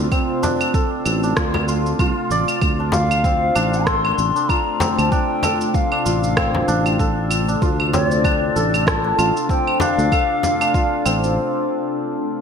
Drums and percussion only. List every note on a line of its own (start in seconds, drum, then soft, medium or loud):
0.12 kick loud
0.12 cabasa soft
0.12 claves medium
0.43 frame drum medium
0.43 cabasa medium
0.61 cabasa soft
0.61 claves medium
0.74 kick loud
0.74 cabasa soft
1.06 cabasa medium
1.06 claves medium
1.23 cabasa soft
1.37 kick loud
1.37 cross-stick medium
1.37 cabasa soft
1.54 frame drum medium
1.54 claves medium
1.68 cabasa medium
1.86 cabasa soft
1.99 kick loud
1.99 cabasa soft
1.99 claves medium
2.31 cabasa medium
2.48 cabasa soft
2.48 claves medium
2.61 kick medium
2.61 cabasa soft
2.61 claves medium
2.92 frame drum medium
2.92 cabasa medium
3.11 cabasa soft
3.11 claves medium
3.24 kick medium
3.24 cabasa soft
3.56 cabasa medium
3.56 claves medium
3.74 cabasa soft
3.87 kick loud
3.87 cross-stick medium
3.87 cabasa soft
4.05 claves medium
4.18 cabasa medium
4.36 cabasa soft
4.49 kick medium
4.49 cabasa soft
4.49 claves medium
4.80 frame drum medium
4.80 cabasa medium
4.99 cabasa soft
4.99 claves medium
5.12 kick loud
5.12 cabasa soft
5.43 frame drum medium
5.43 cabasa medium
5.43 claves medium
5.61 cabasa soft
5.74 kick loud
5.74 cabasa soft
5.92 claves medium
6.06 cabasa medium
6.24 cabasa soft
6.37 kick loud
6.37 cross-stick medium
6.37 cabasa soft
6.37 claves medium
6.55 frame drum medium
6.68 cabasa medium
6.86 cabasa soft
6.86 claves medium
6.99 kick loud
6.99 cabasa soft
7.31 cabasa medium
7.31 claves medium
7.49 cabasa soft
7.62 kick medium
7.62 cabasa soft
7.80 claves medium
7.93 frame drum medium
7.93 cabasa medium
8.11 cabasa soft
8.24 kick loud
8.24 cabasa soft
8.24 claves medium
8.56 cabasa medium
8.74 cabasa soft
8.74 claves medium
8.87 kick medium
8.87 cross-stick medium
8.87 cabasa soft
9.19 cabasa medium
9.19 claves medium
9.37 cabasa soft
9.49 kick loud
9.49 cabasa soft
9.67 claves medium
9.80 frame drum medium
9.80 cabasa medium
9.99 cabasa soft
10.12 kick medium
10.12 cabasa soft
10.12 claves medium
10.43 frame drum medium
10.43 cabasa medium
10.61 cabasa soft
10.61 claves medium
10.74 kick medium
10.74 cabasa soft
11.06 cabasa medium
11.06 claves medium
11.24 cabasa soft